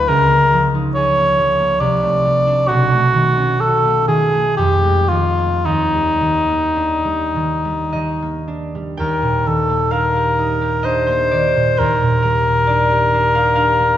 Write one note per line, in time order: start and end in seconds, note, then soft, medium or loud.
0.00 0.11 D2 soft
0.00 0.12 F#3 soft
0.00 0.11 A3 soft
0.00 0.11 E4 soft
0.08 1.83 C#2 soft
0.08 0.69 A#4 medium
0.30 1.16 A#3 soft
0.53 1.38 F3 soft
0.75 1.84 D#4 soft
0.95 1.84 G#4 soft
0.95 1.81 C#5 medium
1.18 1.58 A#3 soft
1.39 1.84 F3 soft
1.60 1.84 A#3 soft
1.80 2.72 C2 soft
1.80 2.69 D5 medium
2.02 2.90 A3 soft
2.25 2.72 G3 soft
2.47 2.72 D4 soft
2.67 4.62 B1 soft
2.67 3.62 F#4 medium
2.92 3.83 A3 soft
3.14 4.07 D#3 soft
3.37 4.62 C#4 soft
3.60 4.62 F#4 soft
3.60 4.07 A4 medium
3.84 4.32 A3 soft
4.08 4.61 D#3 soft
4.08 4.56 G#4 medium
4.33 4.62 A3 soft
4.57 5.71 F2 soft
4.57 5.10 G4 medium
4.84 5.71 G#3 soft
5.08 5.71 D#3 soft
5.08 5.67 F4 medium
5.38 6.48 A#3 soft
5.65 8.98 D#2 soft
5.65 8.49 D#4 medium
5.94 7.03 G3 soft
6.21 7.34 D#3 soft
6.49 8.21 A#3 soft
6.76 8.47 D4 soft
7.05 7.64 G3 soft
7.36 7.93 D#3 soft
7.65 8.74 G3 soft
7.93 9.04 D#3 soft
7.93 10.82 D#5 medium
8.22 9.68 A#3 soft
8.48 9.92 D4 soft
8.75 12.23 G3 soft
8.97 11.78 D#2 soft
8.97 9.49 A#4 soft
8.97 12.87 G5 medium
9.22 11.55 A#2 soft
9.47 11.32 D#3 soft
9.47 9.93 A4 soft
9.69 11.07 A#3 soft
9.91 10.84 D4 soft
9.91 10.87 A#4 medium
9.91 11.50 F5 medium
10.16 10.60 G4 soft
10.39 11.83 D#4 soft
10.61 12.90 G4 soft
10.83 12.68 D4 soft
10.83 11.80 C5 medium
10.83 11.82 D#5 medium
11.07 12.46 A#3 soft
11.07 11.48 C5 medium
11.31 11.83 D#3 soft
11.31 12.66 D5 medium
11.56 11.83 A#2 soft
11.77 13.97 D#2 soft
11.77 13.97 A#4 medium
11.77 12.55 C5 medium
12.02 13.97 A#2 soft
12.23 13.97 G3 soft
12.23 13.97 A#4 medium
12.47 13.79 A#3 soft
12.67 13.13 D4 soft
12.67 13.97 D5 medium
12.91 13.35 G4 soft
13.14 13.57 D4 soft
13.35 13.97 G4 soft
13.35 13.54 F5 medium
13.55 13.97 D4 soft
13.55 13.97 F5 medium
13.80 13.97 A#3 soft